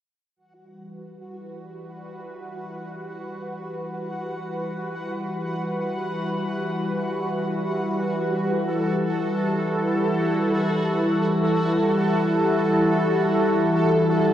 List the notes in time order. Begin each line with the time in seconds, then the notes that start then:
0.36 E3 G3 F#4 B4 F#5
8.50 E4 A4